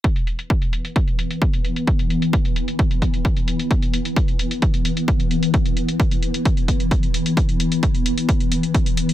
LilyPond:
<<
  \new Staff \with { instrumentName = "Synth drone" } { \clef bass \time 4/4 \key c \major \tempo 4 = 131 <e b>1~ | <e b>1~ | <e b>1~ | <e b>1~ |
<e b>1 | }
  \new DrumStaff \with { instrumentName = "Drums" } \drummode { \time 4/4 <hh bd>16 hh16 hh16 hh16 <hh bd>16 hh16 hh16 hh16 <hh bd>16 hh16 hh16 hh16 <hh bd>16 hh16 hh16 hh16 | <hh bd>16 hh16 hh16 hh16 <hh bd>16 hh16 hh16 hh16 <hh bd>16 hh16 <hh bd>16 hh16 <hh bd>16 hh16 hh16 hh16 | <hh bd>16 hh16 hh16 hh16 <hh bd>16 hh16 hh16 hh16 <hh bd>16 hh16 hh16 hh16 <hh bd>16 hh16 hh16 hh16 | <hh bd>16 hh16 hh16 hh16 <hh bd>16 hh16 hh16 hh16 <hh bd>16 hh16 <hh bd>16 hh16 <hh bd>16 hh16 hh16 hh16 |
<hh bd>16 hh16 hh16 hh16 <hh bd>16 hh16 hh16 hh16 <hh bd>16 hh16 hh16 hh16 <hh bd>16 hh16 hh16 hh16 | }
>>